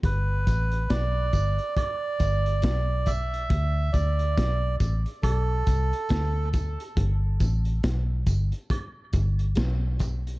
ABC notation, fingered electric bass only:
X:1
M:4/4
L:1/16
Q:"Swing 16ths" 1/4=69
K:G
V:1 name="Fingered electric bass" clef=bass
G,,,2 A,,,2 B,,,2 G,,, z3 G,,,2 B,,,4 | D,,2 D,,2 B,,,2 A,,, z B,,,2 C,, z D,,3 z | G,,,2 A,,,2 B,,,2 G,,, z3 G,,,2 B,,,4 |]